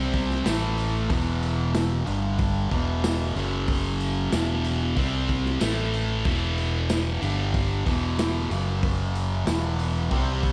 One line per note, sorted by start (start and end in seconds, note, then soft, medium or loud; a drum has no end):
0.00 0.42 C2 medium
0.00 0.44 C3 medium
0.00 0.45 G3 loud
0.00 0.45 C4 loud
0.14 kick medium
0.14 open hi-hat medium
0.31 snare soft
0.44 1.07 A1 medium
0.44 1.09 A2 medium
0.44 1.09 E3 loud
0.44 1.10 A3 loud
0.44 snare loud
0.44 open hi-hat medium
0.44 tambourine loud
0.78 open hi-hat medium
1.10 2.03 E1 loud
1.10 2.06 E2 medium
1.10 2.06 B2 medium
1.10 2.07 E3 medium
1.10 kick loud
1.10 open hi-hat medium
1.43 open hi-hat medium
1.75 snare loud
1.75 open hi-hat medium
1.75 tambourine medium
2.06 2.68 G1 medium
2.06 2.70 G2 medium
2.06 2.70 D3 loud
2.06 2.71 G3 loud
2.06 open hi-hat medium
2.39 kick loud
2.39 open hi-hat medium
2.70 3.32 E1 medium
2.70 3.35 E2 loud
2.70 3.35 B2 loud
2.70 3.35 E3 loud
2.70 kick medium
2.70 open hi-hat medium
3.04 snare loud
3.04 open hi-hat medium
3.04 tambourine medium
3.35 4.29 F#1 medium
3.35 4.31 F#2 medium
3.35 4.32 C#3 medium
3.35 4.32 F#3 loud
3.35 open hi-hat medium
3.68 kick loud
3.68 open hi-hat medium
4.01 open hi-hat medium
4.32 4.93 E1 medium
4.32 4.96 E2 medium
4.32 4.96 B2 medium
4.32 4.96 E3 loud
4.32 snare loud
4.32 open hi-hat medium
4.32 tambourine medium
4.64 open hi-hat medium
4.97 5.57 C2 medium
4.97 5.60 C3 medium
4.97 5.61 G3 loud
4.97 5.61 C4 loud
4.97 kick loud
4.97 open hi-hat medium
5.29 kick medium
5.29 open hi-hat medium
5.46 snare soft
5.61 6.22 A1 medium
5.61 6.25 A2 medium
5.61 6.25 E3 medium
5.61 6.25 A3 medium
5.61 snare loud
5.61 open hi-hat medium
5.61 tambourine medium
5.94 open hi-hat medium
6.25 7.18 E1 medium
6.25 7.21 E2 medium
6.25 7.21 B2 medium
6.25 7.22 E3 medium
6.25 kick loud
6.25 open hi-hat medium
6.58 open hi-hat medium
6.89 snare loud
6.89 open hi-hat medium
6.89 tambourine medium
7.21 7.83 G1 medium
7.21 7.85 G2 medium
7.21 7.85 D3 medium
7.21 7.86 G3 loud
7.21 open hi-hat medium
7.54 kick loud
7.54 open hi-hat medium
7.86 8.47 E1 medium
7.86 8.50 E2 loud
7.86 8.50 B2 loud
7.86 8.50 E3 medium
7.86 kick medium
7.86 open hi-hat medium
8.19 snare loud
8.19 open hi-hat medium
8.19 tambourine medium
8.51 9.43 F#1 medium
8.51 9.46 F#2 medium
8.51 9.46 C#3 medium
8.51 9.47 F#3 loud
8.51 open hi-hat medium
8.83 kick loud
8.83 open hi-hat medium
9.15 open hi-hat medium
9.46 10.08 E1 medium
9.46 10.10 E2 medium
9.46 10.11 B2 medium
9.46 10.11 E3 loud
9.46 snare loud
9.46 open hi-hat medium
9.46 tambourine medium
9.79 open hi-hat medium
10.11 10.52 C2 medium
10.11 10.52 C3 medium
10.11 10.52 G3 medium
10.11 10.52 C4 loud
10.11 kick loud
10.11 open hi-hat medium
10.43 kick medium
10.43 open hi-hat medium